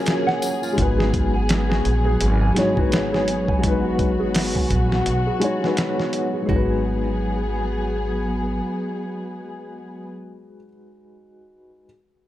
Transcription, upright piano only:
0.00 0.80 F#3 medium
0.00 0.80 C#4 medium
0.00 0.79 F4 medium
0.00 0.79 A#4 medium
0.00 0.79 C#5 loud
0.73 2.50 G#3 medium
0.73 2.52 D#4 medium
0.79 2.53 F#4 medium
0.79 2.55 B4 medium
2.54 2.71 G#3 medium
2.54 2.72 D#4 medium
2.54 2.72 F#4 medium
2.59 2.73 C#5 loud
2.75 2.84 G#3 medium
2.75 2.85 D#4 medium
2.75 2.86 F#4 medium
2.79 2.86 B4 medium
3.59 5.36 G#3 medium
3.59 5.37 D#4 medium
3.65 5.39 F#4 medium
3.65 5.40 B4 medium
5.40 5.56 G#3 medium
5.40 5.57 D#4 medium
5.40 5.58 F#4 medium
5.44 5.59 C#5 loud
5.60 5.70 G#3 medium
5.60 5.71 D#4 medium
5.60 5.71 F#4 medium
5.65 5.72 B4 medium
6.42 10.54 G#3 medium
6.47 10.58 D#4 medium
6.51 10.63 F#4 medium
6.56 10.67 B4 medium

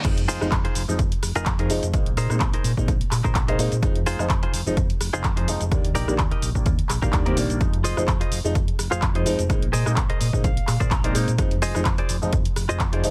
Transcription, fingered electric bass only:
0.05 0.24 F2 loud
0.28 0.38 F1 loud
0.41 0.50 F1 loud
0.52 0.62 F2 medium
0.76 0.86 F1 medium
0.88 0.97 F1 medium
0.99 1.09 F2 loud
1.23 1.33 F1 loud
1.35 1.44 F1 medium
1.46 1.65 F2 medium
1.70 1.80 F1 medium
1.83 1.91 F1 medium
1.94 2.13 A#1 loud
2.17 2.27 A#2 medium
2.30 2.38 A#2 medium
2.41 2.51 A#1 medium
2.64 2.74 A#2 medium
2.77 2.86 A#2 medium
2.88 2.98 A#1 loud
3.12 3.22 A#2 medium
3.25 3.33 A#2 loud
3.35 3.54 A#1 medium
3.59 3.69 A#2 medium
3.72 3.80 A#2 medium
3.82 4.02 F2 loud
4.06 4.16 F1 loud
4.19 4.27 F1 loud
4.30 4.40 F2 medium
4.53 4.63 F1 medium
4.66 4.75 F1 medium
4.77 4.87 F2 loud
5.00 5.11 F1 loud
5.13 5.22 F1 loud
5.24 5.43 F2 medium
5.48 5.58 F1 medium
5.61 5.69 F1 medium
5.71 5.91 D#2 loud
5.95 6.05 A#1 medium
6.08 6.16 A#1 loud
6.19 6.29 D#2 medium
6.42 6.52 A#1 medium
6.55 6.64 A#1 medium
6.66 6.76 D#2 loud
6.90 7.00 A#1 loud
7.03 7.11 A#1 loud
7.13 7.37 D#2 loud
7.37 7.47 A#1 loud
7.50 7.58 A#1 medium
7.61 7.80 F2 loud
7.84 7.94 F1 loud
7.97 8.06 F1 loud
8.08 8.18 F2 medium
8.32 8.42 F1 medium
8.44 8.53 F1 medium
8.55 8.65 F2 loud
8.79 8.89 F1 loud
8.92 9.00 F1 loud
9.02 9.21 F2 medium
9.26 9.36 F1 medium
9.39 9.47 F1 medium
9.50 9.69 A#1 loud
9.74 9.83 A#2 loud
9.86 9.95 A#2 loud
9.97 10.07 A#1 medium
10.21 10.31 A#2 medium
10.33 10.42 A#2 medium
10.44 10.54 A#1 loud
10.68 10.78 A#2 loud
10.80 10.89 A#2 loud
10.91 11.10 A#1 medium
11.15 11.25 A#2 medium
11.28 11.36 A#2 medium
11.38 11.57 F2 loud
11.62 11.72 F1 medium
11.75 11.84 F1 loud
11.86 11.96 F2 medium
12.10 12.20 F1 medium
12.23 12.31 F1 medium
12.33 12.43 F2 loud
12.57 12.67 F1 loud
12.70 12.78 F1 loud
12.80 12.99 F2 medium
13.04 13.11 F1 medium

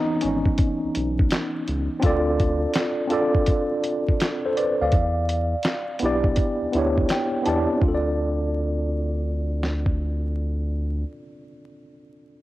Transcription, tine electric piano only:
0.00 2.05 E3 medium
0.00 2.06 B3 medium
0.00 2.00 C4 medium
0.00 0.22 C#4 medium
0.00 2.05 D#4 loud
0.22 1.63 C#4 medium
2.00 2.75 C4 loud
2.00 2.76 D4 medium
2.00 2.77 F4 medium
2.05 2.78 A4 medium
2.05 2.79 D5 loud
3.07 4.11 C4 medium
3.07 4.11 D4 medium
3.07 4.12 F4 medium
3.12 3.84 A4 medium
3.12 3.85 D5 medium
4.45 4.57 A4 medium
4.45 4.57 C5 medium
4.57 4.79 B4 medium
4.57 4.79 D5 medium
4.81 5.15 D5 medium
4.81 5.15 F5 medium
6.00 6.53 B3 medium
6.00 6.54 D4 medium
6.00 6.55 E4 medium
6.04 6.55 G4 medium
6.04 6.56 D5 medium
6.72 7.26 B3 medium
6.72 7.26 D4 medium
6.72 7.27 E4 medium
6.77 7.28 G4 medium
6.77 7.29 C#5 medium
7.11 7.44 G5 medium
7.43 7.72 B3 medium
7.43 7.73 D4 medium
7.43 7.74 E4 medium
7.43 7.79 A5 medium
7.47 7.74 G4 medium
7.47 7.75 D5 medium
7.70 10.92 C4 medium
7.76 10.98 D4 medium
7.82 11.05 F4 medium
7.88 11.11 A4 medium
7.94 11.17 D5 medium

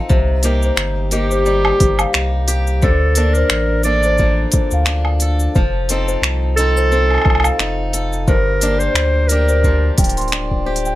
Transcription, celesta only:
0.00 0.10 C5 medium
0.00 0.11 F5 medium
0.10 0.28 C5 loud
0.65 0.78 C5 loud
1.13 1.23 D#5 medium
1.32 1.46 C5 loud
1.81 1.99 C5 medium
2.00 2.14 F5 medium
2.83 3.01 C5 medium
3.37 3.50 C5 loud
3.87 3.96 D5 medium
4.05 4.19 C5 loud
4.55 4.72 C5 medium
4.74 4.87 F5 medium
5.55 5.73 C5 medium
6.08 6.22 C5 loud
6.58 6.68 D#5 medium
6.77 6.91 C5 loud
7.26 7.44 C5 medium
7.44 7.58 F5 medium
8.28 8.46 C5 loud
8.81 8.95 C5 loud
9.30 9.41 D5 medium
9.50 9.64 C5 loud
9.99 10.17 G5 medium
10.17 10.32 C6 medium
10.65 10.84 C5 medium
10.86 10.95 G5 loud

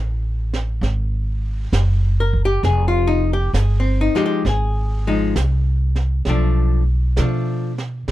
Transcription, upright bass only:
0.00 0.80 A1 medium
0.81 1.70 G#1 medium
1.72 2.61 F#1 medium
2.63 3.51 F1 medium
3.53 4.11 G1 medium
4.15 muted upright bass stroke soft
4.45 5.33 G#1 loud
5.36 6.24 C2 medium
6.26 7.14 B1 medium
7.18 8.06 B2 medium
8.08 8.11 A#2 medium

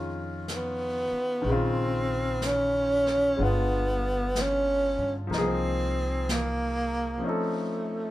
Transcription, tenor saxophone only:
0.56 1.53 B3 medium
1.52 2.48 C4 medium
2.47 3.45 C#4 medium
3.43 4.42 B3 medium
4.41 5.16 C#4 medium
5.37 6.33 C4 medium
6.31 7.30 A#3 medium
7.29 8.11 A3 medium

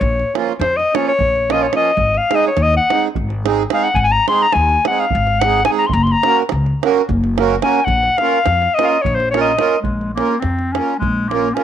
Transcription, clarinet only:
0.00 0.34 C#5 medium
0.59 0.78 C5 medium
0.76 0.96 D#5 medium
0.95 1.07 C#5 medium
1.08 1.53 C#5 medium
1.52 1.64 D#5 medium
1.62 1.75 C#5 medium
1.76 2.19 D#5 medium
2.17 2.37 F5 medium
2.35 2.47 D#5 medium
2.47 2.64 C#5 medium
2.62 2.76 D#5 medium
2.77 3.03 F#5 medium
3.74 3.85 F5 medium
3.83 3.96 F#5 medium
3.95 4.05 F#5 medium
3.95 3.99 G#5 medium
4.04 4.13 G#5 loud
4.12 4.28 A#5 medium
4.28 4.44 C6 medium
4.42 4.55 A#5 medium
4.53 4.87 G#5 medium
4.87 5.01 F#5 medium
5.00 5.41 F5 medium
5.40 5.65 F#5 medium
5.65 5.71 G#5 medium
5.78 5.88 A#5 medium
5.87 5.95 C6 medium
5.93 6.05 A#5 medium
6.03 6.13 C6 medium
6.12 6.37 A#5 medium
7.63 7.86 G#5 medium
7.85 8.19 F#5 medium
8.18 8.76 F5 loud
8.74 8.86 D#5 medium
8.84 9.03 D#5 medium
8.84 8.89 F5 medium
9.01 9.16 C#5 medium
9.15 9.30 C5 medium
9.31 9.41 C#5 medium
9.41 9.79 D#5 medium
9.82 10.13 G#3 medium
10.14 10.41 A#3 medium
10.39 10.74 C4 medium
10.73 10.98 C#4 medium
10.99 11.30 G#3 medium
11.29 11.56 A#3 medium
11.54 11.63 C#4 medium

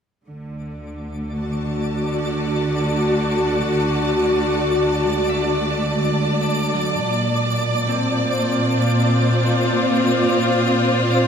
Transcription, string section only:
0.28 7.03 D3 medium
1.33 7.04 F#4 medium
1.38 9.74 A5 soft
2.16 11.27 D5 soft
7.03 11.27 A#2 medium
7.83 11.27 C4 medium
8.24 11.27 C5 medium
8.32 11.27 F4 medium

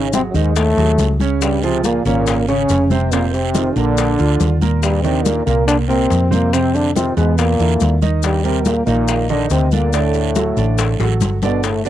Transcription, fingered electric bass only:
0.00 0.29 G#1 medium
0.34 0.74 D#2 medium
0.77 0.97 D#2 medium
0.98 1.99 C#2 medium
2.05 2.65 G#1 medium
2.70 3.70 F1 medium
3.76 4.16 A#1 medium
4.19 4.39 D2 medium
4.40 5.41 D#2 medium
5.47 6.07 C2 medium
6.11 7.11 F2 medium
7.17 7.57 E2 medium
7.59 7.79 E2 medium
7.81 8.81 D#2 medium
8.87 9.47 A#1 medium
9.50 10.51 D2 medium
10.57 10.97 A1 medium
10.99 11.20 A1 medium
11.20 11.89 G1 medium

